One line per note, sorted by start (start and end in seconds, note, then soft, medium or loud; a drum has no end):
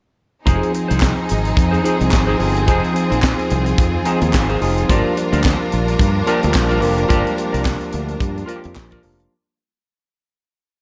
0.45 0.59 F1 medium
0.45 1.26 F3 medium
0.45 4.85 F3 medium
0.45 4.84 C4 medium
0.45 1.26 C4 medium
0.45 2.65 D#4 medium
0.45 0.72 D#4 medium
0.45 1.26 D#4 medium
0.45 4.85 G#4 medium
0.45 0.73 G#4 medium
0.45 1.27 G#4 medium
0.45 0.73 C5 medium
0.45 kick medium
0.45 closed hi-hat medium
0.63 closed hi-hat soft
0.74 muted clean electric guitar stroke soft
0.74 closed hi-hat medium
0.88 1.12 C2 medium
0.88 1.00 D#4 medium
0.88 1.00 G#4 medium
0.88 1.00 C5 medium
0.88 closed hi-hat medium
1.00 muted clean electric guitar stroke soft
1.00 kick loud
1.00 snare loud
1.00 clap medium
1.03 clap loud
1.16 muted clean electric guitar stroke soft
1.29 1.52 G#1 medium
1.29 closed hi-hat medium
1.44 muted clean electric guitar stroke soft
1.44 closed hi-hat soft
1.55 1.78 F2 medium
1.55 muted clean electric guitar stroke soft
1.55 kick loud
1.55 closed hi-hat medium
1.71 1.82 D#4 medium
1.71 1.83 G#4 medium
1.71 1.84 C5 medium
1.71 closed hi-hat soft
1.83 2.25 F3 medium
1.83 2.26 C4 medium
1.83 1.98 D#4 medium
1.83 2.26 D#4 medium
1.83 1.98 G#4 medium
1.83 2.26 G#4 medium
1.83 1.98 C5 medium
1.83 closed hi-hat medium
2.01 2.10 C2 medium
2.01 closed hi-hat medium
2.11 2.34 G#1 medium
2.11 muted clean electric guitar stroke soft
2.11 kick loud
2.11 snare loud
2.11 clap loud
2.15 clap loud
2.27 2.38 D#4 medium
2.27 2.39 G#4 medium
2.27 2.39 C5 medium
2.39 2.68 G1 medium
2.39 2.60 F3 medium
2.39 2.61 C4 medium
2.39 2.61 D#4 medium
2.39 2.61 G#4 medium
2.39 open hi-hat medium
2.55 muted clean electric guitar stroke soft
2.55 closed hi-hat soft
2.67 2.80 F1 loud
2.67 3.47 F3 medium
2.67 3.47 C4 medium
2.67 2.93 D#4 medium
2.67 3.48 D#4 medium
2.67 9.28 F4 medium
2.67 2.94 G#4 medium
2.67 3.48 G#4 loud
2.67 2.94 C5 loud
2.67 kick loud
2.67 closed hi-hat medium
2.85 closed hi-hat soft
2.95 muted clean electric guitar stroke soft
2.95 closed hi-hat medium
3.10 3.32 A#1 medium
3.10 3.21 D#4 medium
3.10 3.21 G#4 medium
3.10 3.21 C5 medium
3.10 closed hi-hat medium
3.22 muted clean electric guitar stroke soft
3.22 kick loud
3.22 snare loud
3.22 clap medium
3.25 clap medium
3.37 muted clean electric guitar stroke soft
3.37 closed hi-hat soft
3.50 3.72 C2 medium
3.50 closed hi-hat medium
3.65 muted clean electric guitar stroke medium
3.65 closed hi-hat soft
3.78 4.00 F2 medium
3.78 kick loud
3.78 closed hi-hat medium
3.94 muted clean electric guitar stroke soft
4.05 4.47 F3 medium
4.05 4.47 C4 medium
4.05 4.23 D#4 medium
4.05 4.47 D#4 medium
4.05 4.21 G#4 medium
4.05 4.48 G#4 medium
4.05 4.20 C5 medium
4.05 closed hi-hat medium
4.21 4.31 D#2 loud
4.21 muted clean electric guitar stroke soft
4.21 closed hi-hat soft
4.33 4.55 G#1 medium
4.33 muted clean electric guitar stroke soft
4.33 kick loud
4.33 snare loud
4.33 clap loud
4.36 clap loud
4.49 4.61 D#4 medium
4.49 4.62 G#4 medium
4.49 4.62 C5 medium
4.49 closed hi-hat soft
4.60 4.83 F1 medium
4.60 4.82 F3 medium
4.60 4.82 C4 medium
4.60 4.82 D#4 medium
4.60 4.82 G#4 medium
4.60 snare soft
4.60 open hi-hat medium
4.77 muted clean electric guitar stroke medium
4.77 closed hi-hat soft
4.89 5.01 G1 loud
4.89 5.68 F3 medium
4.89 9.28 G3 medium
4.89 5.69 A#3 medium
4.89 9.28 D4 medium
4.89 5.69 D4 medium
4.89 5.15 F4 medium
4.89 5.69 G4 medium
4.89 9.28 A#4 medium
4.89 5.15 A#4 medium
4.89 5.16 D5 medium
4.89 kick medium
4.89 closed hi-hat medium
5.17 muted clean electric guitar stroke soft
5.17 closed hi-hat medium
5.32 5.54 D2 medium
5.32 5.43 F4 medium
5.32 5.43 A#4 medium
5.32 5.43 D5 medium
5.32 closed hi-hat medium
5.44 muted clean electric guitar stroke soft
5.44 kick loud
5.44 snare loud
5.44 clap medium
5.47 clap medium
5.60 muted clean electric guitar stroke soft
5.72 5.94 A#1 medium
5.72 closed hi-hat medium
5.88 muted clean electric guitar stroke soft
5.88 closed hi-hat soft
5.99 6.21 G2 loud
5.99 kick loud
5.99 closed hi-hat medium
6.15 muted clean electric guitar stroke soft
6.26 6.68 F3 medium
6.26 6.68 A#3 medium
6.26 6.68 D4 medium
6.26 6.44 F4 medium
6.26 6.69 G4 loud
6.26 6.42 A#4 medium
6.26 6.41 D5 medium
6.26 closed hi-hat medium
6.42 6.53 D2 loud
6.42 muted clean electric guitar stroke soft
6.42 closed hi-hat soft
6.53 6.84 A#1 medium
6.53 muted clean electric guitar stroke soft
6.53 kick loud
6.53 snare loud
6.53 clap loud
6.57 clap medium
6.69 6.80 F4 medium
6.69 6.81 A#4 medium
6.69 6.82 D5 medium
6.69 closed hi-hat soft
6.81 7.04 F1 medium
6.81 7.02 F3 medium
6.81 7.03 A#3 medium
6.81 7.03 D4 medium
6.81 7.03 G4 medium
6.81 muted clean electric guitar stroke soft
6.81 open hi-hat medium
6.98 muted clean electric guitar stroke soft
6.98 closed hi-hat soft
7.09 7.22 G1 medium
7.09 7.89 F3 medium
7.09 7.17 G#3 medium
7.09 7.90 D4 medium
7.09 7.35 F4 medium
7.09 7.90 G4 medium
7.09 7.36 A#4 medium
7.09 7.36 D5 medium
7.09 kick loud
7.09 closed hi-hat medium
7.16 7.92 A#3 medium
7.27 closed hi-hat soft
7.38 muted clean electric guitar stroke soft
7.38 closed hi-hat medium
7.52 7.75 C2 medium
7.52 7.63 F4 medium
7.52 7.64 A#4 medium
7.52 7.63 D5 medium
7.52 closed hi-hat soft
7.65 muted clean electric guitar stroke soft
7.65 kick loud
7.65 snare loud
7.65 clap medium
7.67 clap loud
7.80 muted clean electric guitar stroke soft
7.80 closed hi-hat soft
7.93 8.15 D2 medium
7.93 closed hi-hat medium
8.07 muted clean electric guitar stroke soft
8.07 closed hi-hat soft
8.20 8.42 G2 medium
8.20 kick loud
8.20 closed hi-hat medium
8.35 muted clean electric guitar stroke soft
8.35 closed hi-hat soft
8.46 8.89 F3 medium
8.46 8.90 A#3 medium
8.46 8.90 D4 medium
8.46 8.64 F4 medium
8.46 8.56 F4 medium
8.46 8.63 A#4 medium
8.46 8.62 D5 medium
8.46 closed hi-hat medium
8.56 8.93 G4 medium
8.64 8.74 F2 loud
8.64 closed hi-hat soft
8.76 8.98 A#1 loud
8.76 muted clean electric guitar stroke soft
8.76 kick loud
8.76 snare loud
8.76 clap loud
8.78 clap medium
8.91 9.03 F4 medium
8.91 9.04 A#4 medium
8.91 9.04 D5 medium
8.91 kick medium
8.91 closed hi-hat soft
9.03 9.26 F1 medium
9.03 9.24 F3 medium
9.03 9.25 A#3 medium
9.03 9.25 D4 medium
9.03 9.25 A#4 medium
9.03 open hi-hat medium
9.20 muted clean electric guitar stroke soft
9.20 closed hi-hat soft